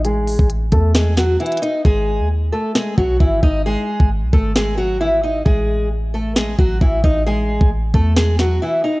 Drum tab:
HH |x---o---x---x---x---x---xxxxx---|--------------------------------|--------------------------------|--------------------------------|
SD |----------------o---o-----------|----------------o---------------|----------------o---------------|----------------o---------------|
BD |------o-----o-------------------|o-------------------o---o---o---|------o-----o-------------------|o-------------------o---o---o---|

HH |--------------------------------|
SD |----------------o---o-----------|
BD |------o-----o-------------------|